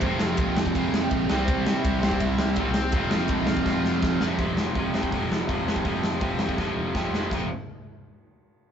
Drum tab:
CC |----------------|----------------|----------------|----------------|
RD |x---x---x---x---|x---x---x---x---|x---x-----------|----------------|
HH |----------------|----------------|----------------|o---o---o---o---|
SD |--o---o---o---o-|--o---o---o---o-|--o---o-o-o-o-o-|--o---o---o---o-|
BD |o---o--oo---o---|o---o--oo---o---|o---o--oo---o---|o---o--oo---o--o|

CC |----------------|x---------------|
RD |----------------|----------------|
HH |o---o-----------|----------------|
SD |--o---o-o---o-o-|----------------|
BD |o---o--oo---o---|o---------------|